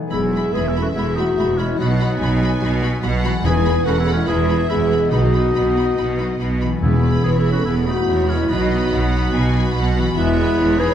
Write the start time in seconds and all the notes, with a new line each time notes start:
Already playing: B2 E3 F#3 A3 D#4
0.00 B3 G#4
0.07 E1 E2 B3 E4 G#4 B4 E5 B5
0.11 G#3 E4
0.32 G#3 E4 B5
0.52 E1 E2 G#3 E4 G#4 B4
0.56 B5
0.67 B3 E4 G#4
0.75 G#3 E4 B5
0.81 C#4 F#4 A4
0.95 E1 E2 G#3 B3 E4 G#4 B5
1.15 G#3 A3 D#4 E4 F#4 B5
1.38 E1 E2 G#3 E4 B5
1.57 B2 G#3 C#4 E4 B5
1.65 B3
1.69 F#4
1.74 F#3 D#4 B4
1.78 B1 B2 F#3 B3 F#4 F#5 B5
2.00 F#3 F#4 B5
2.19 B1 B2 F#3 F#4 G#5
2.23 B5
2.40 F#3 F#4 B5
2.61 B1 B2 F#3 F#4 B5
2.81 F#3 F#4 B5
3.02 B1 B2 F#3 F#4 F#5 B5
3.24 E3 F#3 F#4 B5
3.30 B3
3.35 G#4
3.39 B4
3.43 E1 E2 G#3 E4 G#4 B4 G#5 B5
3.65 G#3 E4 B5
3.85 E1 E2 G#3 C#4 E4 F#4 A4 F#5 B5
4.00 B3 E4 G#4
4.07 G#3 E4 B5
4.13 G#3 C#4 E4
4.27 E1 E2 G#3 E4 G#4 B4 E5 B5
4.48 G#3 E4 B5
4.69 E1 E2 G#3 B3 E4 G#4 B5
4.91 B2 G#3 E4 B5
4.99 B3
5.03 D#4
5.07 B2 D#4 B4
5.12 B1 B2 B3 D#4 F#4 D#5 B5
5.33 B3 D#4 B5
5.54 B1 B2 B3 D#4 B5
5.76 B3 D#4 B5
5.97 B1 B2 B3 D#4 B5
6.18 B3 D#4 B5
6.39 B1 B2 B3 D#4 B5
6.61 E3 B3 D#4 B5
6.68 B3
6.72 G#4
6.77 B4
6.81 E1 E2 B3 E4 G#4 B4
7.03 B3 E4 B5
7.24 E1 E2 E4 G#4 B4 C#5
7.38 B3 E4 G#4
7.45 B3 E4 B5
7.52 C#4 F#4 A4
7.65 E1 E2 B3 E4 G#4 B4
7.86 E3 A3 B3 D#4 F#4 B5
8.08 E1 E2 C#5
8.28 B2 G#3 B3 C#4 E4 B5
8.36 B3
8.41 F#4
8.45 F#3 B4
8.50 B1 B2 B3 D#4 F#4 D#5 B5
8.71 B3 F#4 B5
8.91 B1 B2 F#5
9.12 B3 F#4 B5
9.33 B1 B2 G#5
9.54 B3 F#4 B5
9.73 B1 B2 F#5
9.95 E3 B3 F#4 B5
10.03 B3
10.07 G#4
10.12 G#3 E4 B4 E5
10.16 E1 E2 B3
10.37 B3 G#4 B5
10.57 E1 E2 C#5
10.77 B3 D#4 G#4 B4 B5